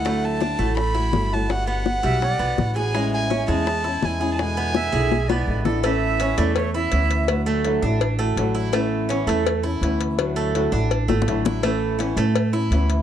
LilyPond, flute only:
\new Staff \with { instrumentName = "Flute" } { \time 4/4 \key a \major \tempo 4 = 166 r1 | r4. e''8 d''4~ d''16 r8. | r1 | r4 e''4. d''4 d''8 |
e''4. d''8 cis''8 e''4.~ | e''8 r2. r8 | r1 | r1 |
r1 | }